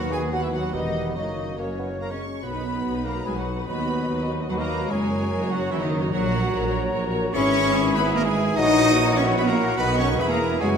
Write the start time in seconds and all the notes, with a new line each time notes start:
Already playing: D#2 F#3 B3 F#4 B4 F#5
0.10 G#3 G#4 G#5
0.31 F#3 B3 F#4 B4 F#5
0.43 E3 E4 E5
0.52 F#3 F#4 F#5
0.73 E1 E2 D#3 G3 B3 D#4 G4 B4 D#5
1.15 F#1 F#2 D#3 F#3 A#3 D#4 F#4 C#5 D#5
1.58 C#3 A#3 C#4 F#4 C#5
1.79 B3
2.00 A#3 A#4 A#5
2.10 G#3 C#4 C#5 C#6
2.43 B1 F#3 B3 D#4 F#4 B4 B5
2.53 D#4 B4
2.64 B3 F#4
2.75 D#4 B4
2.85 B1 B3 F#4
2.95 D#4 B4
3.04 A#3 B3 F#4 A#4 A#5
3.15 D#4 B4
3.25 B1 G#3 B3 F#4 G#4 G#5
3.34 F#3 D#4 F#4 B4 F#5
3.47 B3 F#4
3.58 D#4 B4
3.67 D#2 F#3 B3 D#4 F#4 B4 B5
3.79 F#4 D#5
3.89 D#4 B4
4.00 F#4 D#5
4.09 D#2 D#4 B4
4.20 F#4 D#5
4.31 D#4 B4
4.41 F#4 D#5
4.47 D#2 F#3 D#4 F#4 B4 F#5 B5
4.58 A#3 F#4 A#4 D#5 A#5
4.70 D#4 B4
4.80 F#4 D#5
4.89 F#1 F#2 F#3 G#3 C#4 F#4 G#4 A#4 C#5 G#5 A#5
5.01 F#4 C#5
5.11 C#4 A#4
5.20 F#4 C#5
5.31 F#1 F#2 C#4 A#4
5.41 F#4 C#5
5.50 F#3 C#4 F#4 A#4 F#5
5.61 F#4 C#5
5.69 F#1 F#2 E3 C#4 E4 A#4 E5
5.80 D#3 D#4 F#4 C#5 D#5
5.92 C#4 A#4
6.02 F#4 C#5
6.11 A#1 F#3 F#4 A#4 C#5 F#5 A#5
6.22 F#4 A#4
6.32 A#4 C#5
6.43 F#4 A#4
6.53 A#1 A#4 C#5
6.64 F#4 A#4
6.72 A#4 C#5
6.82 F#4 A#4
6.93 A#1 A#4 C#5
7.03 F#4 A#4
7.14 A#4 C#5
7.24 F#4 A#4
7.33 G#1 E3 C#4 E4 G#4 C#5 E5 B5 C#6
7.95 B3 B4 B5
8.14 A#3 A#4 A#5
8.25 G#3 G#4 G#5
8.55 A#1 D#4 E4 F#4 C#5 D#5 F#5 D#6
9.17 C#4 C#5 C#6
9.37 B3 B4 B5
9.47 A#3 A#4 A#5
9.77 B1 D#3 B3 D#4 F#4 B4 B5
9.98 C#4 C#5 C#6
10.17 E1 E2 E3 B3 E4 G#4 B4 E5 B5
10.29 A#3 A#4 A#5
10.59 F#1 F#2 G#3 E4 F#4 G#4 C#5 F#5 G#5